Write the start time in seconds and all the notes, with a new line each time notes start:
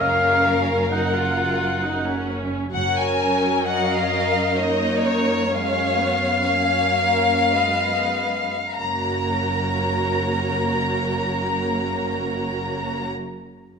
0.00 F#1 F#2 C#4 A#4 F5
0.90 D#4 F#5
1.14 F4
1.83 D#4
2.05 C#4
2.73 F#1 F#2 F#3 C#4 A#4 C#5 F#5
2.97 G#5
3.66 A#4 D#5 F#5
3.89 F5
4.56 A#3 D#4 A#4 C#5 D#5
5.03 C#5
5.47 G#3 C#4 C#5 F5
5.96 B3
6.43 A#3 C#4 C#5
6.95 A#4
7.53 G#3 B3 B4 D#5
8.77 F#1 F#2 A#3 F#4 A#4 C#5 A#5